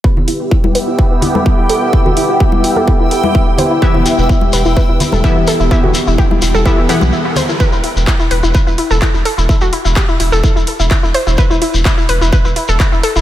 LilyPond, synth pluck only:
\new Staff \with { instrumentName = "Synth pluck" } { \time 4/4 \key e \minor \tempo 4 = 127 r1 | r1 | <e b e' g' e''>2. <e b e' g' e''>4 | <e b e' g' e''>2 <e b e' g' e''>8 <e b e' g' fis''>4. |
r1 | r1 | r1 | }